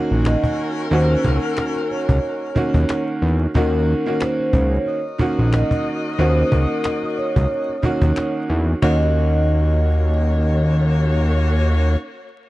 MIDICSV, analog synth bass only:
0, 0, Header, 1, 2, 480
1, 0, Start_track
1, 0, Key_signature, -6, "minor"
1, 0, Tempo, 659341
1, 665, Time_signature, 4, 2, 24, 8
1, 9094, End_track
2, 0, Start_track
2, 0, Title_t, "Analog synth bass"
2, 0, Program_c, 0, 38
2, 81, Note_on_c, 0, 34, 92
2, 263, Note_off_c, 0, 34, 0
2, 664, Note_on_c, 0, 39, 112
2, 846, Note_off_c, 0, 39, 0
2, 907, Note_on_c, 0, 37, 93
2, 1010, Note_off_c, 0, 37, 0
2, 1520, Note_on_c, 0, 37, 98
2, 1599, Note_off_c, 0, 37, 0
2, 1996, Note_on_c, 0, 39, 98
2, 2076, Note_off_c, 0, 39, 0
2, 2344, Note_on_c, 0, 40, 95
2, 2526, Note_off_c, 0, 40, 0
2, 2585, Note_on_c, 0, 39, 108
2, 2871, Note_off_c, 0, 39, 0
2, 3300, Note_on_c, 0, 37, 99
2, 3484, Note_off_c, 0, 37, 0
2, 3921, Note_on_c, 0, 34, 91
2, 4103, Note_off_c, 0, 34, 0
2, 4504, Note_on_c, 0, 39, 112
2, 4686, Note_off_c, 0, 39, 0
2, 4746, Note_on_c, 0, 37, 89
2, 4849, Note_off_c, 0, 37, 0
2, 5360, Note_on_c, 0, 37, 94
2, 5438, Note_off_c, 0, 37, 0
2, 5836, Note_on_c, 0, 39, 97
2, 5916, Note_off_c, 0, 39, 0
2, 6185, Note_on_c, 0, 40, 93
2, 6367, Note_off_c, 0, 40, 0
2, 6424, Note_on_c, 0, 39, 102
2, 8709, Note_off_c, 0, 39, 0
2, 9094, End_track
0, 0, End_of_file